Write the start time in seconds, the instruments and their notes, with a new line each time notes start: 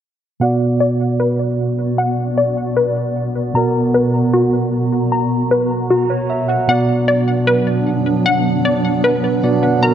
0.40 tine electric piano B2 B3 F#4 D5, ambient pad B2 B3 F#4 D5, synth pluck F#5
0.80 synth pluck D5
1.20 synth pluck B4
1.98 synth pluck F#5
2.38 synth pluck D5
2.77 synth pluck B4
3.54 tine electric piano B2 B3 F#4 A#4, ambient pad F#4 A#5, synth pluck A#5
3.94 synth pluck B4
4.33 synth pluck F#4
5.12 synth pluck A#5
5.51 synth pluck B4
5.90 synth pluck F#4
6.10 tine electric piano C#5
6.30 tine electric piano E5
6.48 tine electric piano F#5
6.68 tine electric piano B2 B3 F#4 D5, ambient pad F#3 B3 D4, synth pluck F#5
7.08 synth pluck D5
7.47 synth pluck B4
8.26 synth pluck F#5
8.65 synth pluck D5
9.04 synth pluck B4
9.24 tine electric piano B4
9.43 tine electric piano B2 B3 F#4 D5
9.63 tine electric piano F#5
9.81 tine electric piano B2 B3 F#4 A#4, ambient pad B2 C#4, synth pluck A#5